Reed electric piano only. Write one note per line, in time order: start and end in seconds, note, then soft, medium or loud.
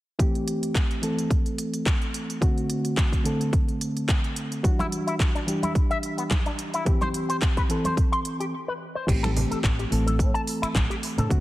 0.19 1.00 E3 medium
0.19 1.00 A3 medium
0.19 1.00 C4 medium
0.19 1.01 G4 medium
1.02 2.38 E3 medium
1.02 2.39 A3 medium
1.02 2.39 C4 medium
1.02 2.39 A4 medium
2.41 3.22 D3 medium
2.41 3.22 A3 medium
2.41 3.22 C4 medium
2.41 3.23 F#4 medium
3.24 4.61 D3 medium
3.24 4.61 A3 medium
3.24 4.61 C4 medium
3.24 4.62 A4 medium
4.63 5.44 E3 medium
4.63 5.44 G3 medium
4.63 5.45 D4 medium
4.63 5.45 F#4 medium
5.46 6.83 E3 medium
5.46 6.83 G3 medium
5.46 6.84 D4 medium
5.46 6.84 G4 medium
6.85 7.66 E3 medium
6.85 7.67 C4 medium
6.85 7.67 G4 medium
7.69 8.53 E3 medium
7.69 8.53 C4 medium
7.69 8.54 A4 medium
9.07 9.88 E3 medium
9.07 9.88 A3 medium
9.07 9.89 C4 medium
9.07 9.89 G4 loud
9.91 11.27 E3 medium
9.91 11.28 A3 medium
9.91 11.28 C4 medium
9.91 11.28 A4 medium
11.29 11.40 D3 medium
11.29 11.40 A3 medium
11.29 11.40 C4 medium
11.29 11.40 F#4 loud